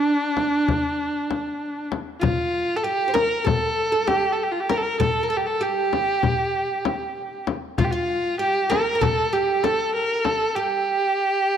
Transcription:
0.00 1.87 D4 medium
0.00 1.90 D4 medium
0.37 frame drum medium
0.68 frame drum medium
1.31 frame drum medium
1.92 frame drum medium
2.21 2.78 F4 medium
2.21 darbuka dum medium
2.21 frame drum medium
2.54 darbuka ka soft
2.76 2.84 A4 medium
2.76 2.85 A4 medium
2.84 3.17 G4 medium
2.84 3.07 G4 medium
3.08 3.13 C5 medium
3.14 3.44 A#4 medium
3.14 3.47 A#4 medium
3.14 darbuka tek medium
3.14 frame drum medium
3.45 3.91 A4 medium
3.45 4.09 A4 medium
3.45 darbuka dum medium
3.45 frame drum medium
3.92 4.07 A4 medium
4.07 4.31 G4 medium
4.07 4.34 G4 medium
4.07 darbuka tek medium
4.07 frame drum medium
4.32 4.45 A4 medium
4.43 4.53 G4 medium
4.52 4.62 F4 medium
4.60 4.72 G4 medium
4.69 4.99 A#4 medium
4.69 4.79 A#4 medium
4.69 darbuka tek medium
4.69 frame drum medium
4.77 4.84 A4 medium
4.83 5.00 A#4 medium
5.00 5.23 A4 medium
5.00 5.29 A4 medium
5.00 darbuka dum loud
5.00 frame drum medium
5.23 5.30 A#4 medium
5.30 5.38 A4 medium
5.30 5.60 A4 medium
5.37 5.47 G4 medium
5.46 5.64 A4 medium
5.61 7.43 G4 medium
5.61 7.48 G4 medium
5.93 darbuka tek medium
5.93 frame drum medium
6.23 frame drum medium
6.23 darbuka dum medium
6.85 darbuka tek medium
6.85 frame drum medium
7.47 darbuka tek medium
7.47 frame drum medium
7.78 7.86 F4 medium
7.78 7.91 F4 medium
7.78 darbuka dum medium
7.78 frame drum medium
7.84 7.92 G4 medium
7.91 8.39 F4 medium
8.39 8.69 G4 medium
8.39 8.71 G4 medium
8.70 8.94 A#4 medium
8.70 9.03 A#4 medium
8.70 darbuka tek medium
8.70 frame drum medium
8.95 9.01 A#4 medium
9.01 9.32 A4 medium
9.01 9.35 A4 medium
9.01 darbuka dum medium
9.01 frame drum medium
9.33 9.64 G4 medium
9.33 9.66 G4 medium
9.63 10.56 A4 medium
9.63 9.94 A4 medium
9.63 darbuka tek medium
9.63 frame drum medium
9.95 10.26 A#4 medium
10.25 10.57 A4 medium
10.25 frame drum medium
10.56 11.57 G4 medium

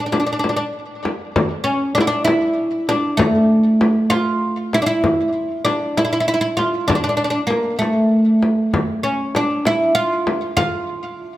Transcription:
0.06 0.11 D4 soft
0.12 0.19 D4 soft
0.12 frame drum medium
0.20 0.25 D4 soft
0.27 0.31 D4 medium
0.33 0.38 D4 soft
0.39 0.47 D4 medium
0.44 frame drum medium
0.49 0.55 D4 soft
0.56 0.63 D4 medium
1.05 frame drum medium
1.36 frame drum medium
1.64 1.94 C#4 medium
1.95 2.00 D4 medium
1.95 frame drum medium
2.01 2.07 E4 medium
2.07 2.24 D4 medium
2.25 2.88 E4 medium
2.25 frame drum medium
2.89 3.21 D4 medium
2.89 frame drum medium
3.17 4.14 A3 medium
3.17 frame drum medium
3.81 frame drum medium
4.10 4.74 F4 medium
4.10 frame drum medium
4.73 4.81 E4 medium
4.73 frame drum medium
4.82 4.86 D4 medium
4.86 5.64 E4 medium
5.04 frame drum medium
5.65 5.97 D4 medium
5.65 frame drum medium
5.97 6.03 E4 medium
5.97 frame drum medium
6.05 6.11 E4 medium
6.13 6.19 E4 medium
6.20 6.27 E4 medium
6.28 6.33 E4 medium
6.34 6.40 E4 medium
6.41 6.49 E4 medium
6.57 6.87 F4 medium
6.57 frame drum soft
6.88 6.94 D4 medium
6.88 frame drum medium
6.95 7.03 D4 medium
7.04 7.08 D4 medium
7.09 7.16 D4 medium
7.17 7.23 D4 medium
7.24 7.29 D4 medium
7.30 7.40 D4 medium
7.47 7.78 A#3 medium
7.47 frame drum soft
7.79 8.45 A3 medium
7.79 frame drum soft
8.43 frame drum soft
8.74 frame drum medium
9.03 9.35 C#4 medium
9.35 9.66 D4 medium
9.35 frame drum medium
9.65 9.94 E4 medium
9.65 frame drum medium
9.95 10.53 F4 loud
10.27 frame drum medium
10.57 11.37 F4 medium
10.57 frame drum medium

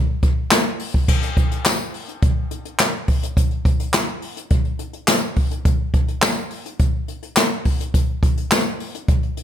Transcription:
0.23 kick medium
0.23 closed hi-hat medium
0.50 snare loud
0.50 clap medium
0.50 closed hi-hat loud
0.50 tambourine medium
0.80 open hi-hat medium
0.94 kick medium
1.08 kick loud
1.08 crash medium
1.22 closed hi-hat soft
1.37 kick loud
1.37 closed hi-hat medium
1.51 closed hi-hat medium
1.65 snare loud
1.65 clap medium
1.65 closed hi-hat medium
1.65 tambourine medium
1.94 open hi-hat medium
2.09 closed hi-hat soft
2.22 kick loud
2.22 closed hi-hat medium
2.51 closed hi-hat medium
2.65 closed hi-hat medium
2.80 snare loud
2.80 clap medium
2.80 closed hi-hat medium
2.80 tambourine medium
3.08 kick medium
3.08 open hi-hat medium
3.23 closed hi-hat medium
3.37 kick loud
3.37 closed hi-hat loud
3.51 closed hi-hat soft
3.65 kick loud
3.65 closed hi-hat medium
3.79 closed hi-hat medium
3.93 snare loud
3.93 clap loud
3.93 closed hi-hat medium
3.93 tambourine medium
4.08 closed hi-hat soft
4.22 open hi-hat medium
4.37 closed hi-hat soft
4.50 kick loud
4.50 closed hi-hat medium
4.65 closed hi-hat soft
4.79 closed hi-hat medium
4.93 closed hi-hat medium
5.08 snare loud
5.08 clap medium
5.08 closed hi-hat medium
5.08 tambourine medium
5.36 kick medium
5.36 open hi-hat medium
5.51 closed hi-hat medium
5.65 kick loud
5.65 closed hi-hat loud
5.94 kick medium
5.94 closed hi-hat medium
6.08 closed hi-hat medium
6.22 snare loud
6.22 clap loud
6.22 closed hi-hat medium
6.22 tambourine medium
6.36 closed hi-hat soft
6.50 open hi-hat medium
6.66 closed hi-hat soft
6.79 kick loud
6.79 closed hi-hat medium
7.08 closed hi-hat medium
7.23 closed hi-hat soft
7.36 snare loud
7.36 clap medium
7.36 closed hi-hat loud
7.36 tambourine medium
7.65 kick medium
7.65 open hi-hat medium
7.81 closed hi-hat medium
7.94 kick loud
7.94 closed hi-hat loud
8.23 kick loud
8.23 closed hi-hat medium
8.37 closed hi-hat medium
8.51 snare loud
8.51 clap medium
8.51 closed hi-hat medium
8.51 tambourine medium
8.66 closed hi-hat soft
8.80 open hi-hat medium
8.95 closed hi-hat soft
9.08 kick loud
9.08 closed hi-hat medium
9.23 closed hi-hat soft
9.37 closed hi-hat medium

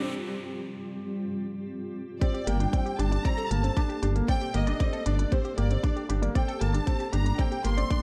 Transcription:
0.00 2.17 G3 medium
0.00 2.17 C4 medium
0.00 0.11 C4 medium
0.00 2.17 F4 medium
0.00 2.17 G4 medium
0.00 riser medium
2.21 8.02 A#3 medium
2.21 2.39 C4 medium
2.21 2.29 G4 medium
2.21 8.02 G4 medium
2.21 8.02 A4 medium
2.21 2.46 D5 medium
2.21 kick loud
2.21 closed hi-hat soft
2.34 2.39 G4 medium
2.34 closed hi-hat soft
2.47 2.67 G1 loud
2.47 2.56 A#3 medium
2.47 2.59 G4 medium
2.47 2.99 G5 medium
2.47 closed hi-hat medium
2.60 2.69 D4 medium
2.60 closed hi-hat soft
2.73 2.91 C4 medium
2.73 2.81 D5 medium
2.73 kick loud
2.73 closed hi-hat soft
2.86 2.98 G4 medium
2.86 closed hi-hat soft
2.99 3.18 G1 medium
2.99 3.08 D4 medium
2.99 3.07 G4 medium
2.99 3.25 A5 loud
2.99 closed hi-hat medium
3.12 3.21 D4 medium
3.12 3.20 D5 medium
3.12 closed hi-hat soft
3.24 3.43 C4 medium
3.24 3.33 D5 loud
3.24 3.51 A#5 loud
3.24 kick loud
3.24 closed hi-hat soft
3.38 3.46 A4 loud
3.38 closed hi-hat soft
3.50 3.70 G1 medium
3.50 3.60 A#3 medium
3.50 4.02 A5 loud
3.50 closed hi-hat medium
3.63 3.73 C4 medium
3.63 closed hi-hat soft
3.77 3.95 D4 medium
3.77 3.85 G4 medium
3.77 kick loud
3.77 closed hi-hat soft
3.89 3.94 G4 medium
3.89 closed hi-hat soft
4.02 4.22 G1 medium
4.02 4.11 D4 medium
4.02 4.14 G4 medium
4.02 closed hi-hat medium
4.16 4.25 A#3 medium
4.16 closed hi-hat soft
4.28 4.46 C4 medium
4.28 4.36 D5 medium
4.28 4.53 G5 loud
4.28 kick loud
4.28 closed hi-hat soft
4.41 4.53 G4 medium
4.41 closed hi-hat soft
4.54 4.74 G1 medium
4.54 4.63 A#3 medium
4.54 4.62 G4 medium
4.54 5.06 D#5 loud
4.54 closed hi-hat medium
4.67 4.76 D4 medium
4.67 4.75 D5 medium
4.67 closed hi-hat soft
4.80 4.98 C4 medium
4.80 4.88 D5 loud
4.80 kick loud
4.80 closed hi-hat soft
4.93 5.01 A4 loud
4.93 closed hi-hat soft
5.06 5.25 G1 medium
5.06 5.15 D4 medium
5.06 5.32 D5 medium
5.06 closed hi-hat medium
5.19 5.28 D4 medium
5.19 closed hi-hat soft
5.32 5.50 C4 medium
5.32 5.40 G4 medium
5.32 5.58 C5 loud
5.32 kick loud
5.32 closed hi-hat soft
5.45 5.50 G4 medium
5.45 closed hi-hat soft
5.57 5.77 G1 loud
5.57 5.66 A#3 medium
5.57 5.70 G4 medium
5.57 6.05 D5 medium
5.57 closed hi-hat medium
5.70 5.79 C4 medium
5.70 closed hi-hat soft
5.83 6.01 D4 medium
5.83 5.92 D5 medium
5.83 kick loud
5.83 closed hi-hat soft
5.96 6.08 G4 medium
5.96 closed hi-hat soft
6.09 6.29 G1 loud
6.09 6.18 D4 medium
6.09 6.17 G4 medium
6.09 closed hi-hat medium
6.22 6.31 A#3 medium
6.22 6.30 D5 medium
6.22 closed hi-hat soft
6.35 6.53 C4 medium
6.35 6.43 D5 loud
6.35 6.59 G5 loud
6.35 kick loud
6.35 closed hi-hat soft
6.48 6.56 A4 loud
6.48 closed hi-hat soft
6.61 6.81 G1 loud
6.61 6.70 A#3 medium
6.61 7.13 A5 medium
6.61 closed hi-hat medium
6.74 6.83 D4 medium
6.74 closed hi-hat soft
6.86 7.04 C4 medium
6.86 6.95 G4 medium
6.86 kick loud
6.86 closed hi-hat soft
7.00 7.05 G4 medium
7.00 closed hi-hat soft
7.13 7.32 G1 medium
7.13 7.22 D4 medium
7.13 7.25 G4 medium
7.13 7.37 A#5 medium
7.13 closed hi-hat medium
7.26 7.35 D4 medium
7.26 closed hi-hat soft
7.38 7.56 C4 medium
7.38 7.46 D5 medium
7.38 7.65 G5 loud
7.38 kick loud
7.38 closed hi-hat soft
7.51 7.63 G4 medium
7.51 closed hi-hat soft
7.64 7.84 G1 medium
7.64 7.73 A#3 medium
7.64 7.72 G4 medium
7.64 8.02 C6 loud
7.64 closed hi-hat medium
7.77 7.86 C4 medium
7.77 7.85 D5 medium
7.77 closed hi-hat soft
7.90 8.02 D4 medium
7.90 7.98 D5 loud
7.90 kick loud
7.90 closed hi-hat soft

